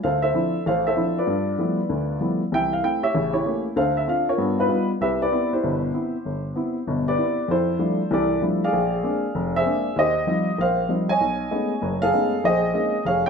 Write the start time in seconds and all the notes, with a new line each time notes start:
0.04 D2 A4 C5 F5
0.22 A4 C5 E5
0.34 F3 C4 D4 E4
0.66 A1 A4 C5 F5
0.87 A4 C5 E5
0.97 F3 C4 D4 E4
1.18 F4 B4 D5
1.27 G2
1.58 F3 G3 A3 B3 E4
1.89 D2
2.21 F3 G3 A3 B3 E4
2.52 C2 E3 E5 G5
2.73 F5
2.83 A3 C4 E4 G5
3.03 G4 C#5 E5
3.15 A1 C#3
3.34 E4 G4 C#5
3.45 A3 A#3 C#4 G4
3.76 D2 D3 A4 C5 F5
3.97 E5
4.08 C4 D4 F4 F5
4.29 F4 A#4 C#5
4.38 G2 B3
4.59 D#4 F4 B4
4.69 G3 B3 D#4 F4
5.01 C2 G4 B4 E5
5.22 G4 B4 D5
5.32 B3 C4 E4
5.53 E4 G4 C5
5.63 G1 B2
5.94 B3 C4 E4
6.25 G1
6.56 B3 C4 E4
6.87 G1 B2
7.08 G4 B4 D5
7.17 B3 C4 E4
7.48 F2 E4 A4 C5
7.79 F3 G3 A3 D4 E4
8.11 C2 E3 G4 A4 D5
8.42 F3 G3 A3 D4 E4
8.64 G#4 D5 F5
8.73 A#1
9.03 G#3 A#3 C4 D4
9.35 F1
9.56 G#4 C5 E5
9.65 G#3 A#3 C4 D4
9.96 D#2 G4 C5 D#5
10.27 F3 G3 C4 D#4
10.58 A#1 A#4 C5 F5
10.89 F3 G3 C4 D#4
11.09 C#5 D#5 G#5
11.21 B1
11.51 G#3 A3 B3 C#4 D#4
11.82 F#1 F#2
12.02 G#4 A4 F5
12.13 G#3 A3 B3 C#4 D#4
12.44 A#1 G#4 C5 D#5
12.74 G#3 A#3 C4 C#4 D#4
13.05 F1 G#4 C#5 F5
13.26 G5